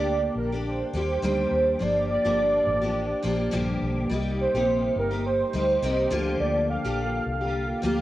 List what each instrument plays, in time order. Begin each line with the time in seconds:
Already playing: fingered electric bass D2, steel-string acoustic guitar D3 G3 A#3 D4 G4, soft synth lead D5
0.35 fingered electric bass A#1, soft synth lead A#4
0.52 steel-string acoustic guitar A#3 D4 G4
0.68 soft synth lead C5
0.93 fingered electric bass D#2, steel-string acoustic guitar G3 A#3 D4 G4
1.22 fingered electric bass D2, steel-string acoustic guitar D#3 G3 A#3 D4 G4
1.51 fingered electric bass D#2
1.79 fingered electric bass G1, steel-string acoustic guitar F3 A#3 D4 G4, soft synth lead D5
2.10 soft synth lead D5
2.25 fingered electric bass G1, steel-string acoustic guitar G2 D3 F3 A#3 D4 G4
2.67 fingered electric bass A1
2.81 steel-string acoustic guitar F3 A#3 D4 G4
3.22 fingered electric bass A#1, steel-string acoustic guitar F3 A#3 D4 G4
3.51 fingered electric bass A#1, steel-string acoustic guitar G2 D3 F3 A#3 D4 G4
3.81 fingered electric bass B1
4.09 fingered electric bass C2, steel-string acoustic guitar G3 A#3 D#4 G4
4.40 soft synth lead C5
4.54 fingered electric bass A#1, steel-string acoustic guitar C3 G3 A#3 D#4 G4
4.96 fingered electric bass G1, soft synth lead A#4
5.11 steel-string acoustic guitar A#3 D#4 G4
5.26 soft synth lead C5
5.53 fingered electric bass D2, steel-string acoustic guitar G3 A#3 D#4 G4
5.82 fingered electric bass C2, steel-string acoustic guitar C3 G3 A#3 D#4 G4
6.11 fingered electric bass D2, steel-string acoustic guitar D3 F3 A#3 F4 G4
6.40 fingered electric bass D2, soft synth lead D5
6.70 soft synth lead F5
6.84 fingered electric bass A#1, steel-string acoustic guitar D3 F3 A#3 F4 G4
7.26 fingered electric bass C2
7.41 steel-string acoustic guitar A#3 F4 G4
7.82 fingered electric bass D2, steel-string acoustic guitar F3 A#3 F4 G4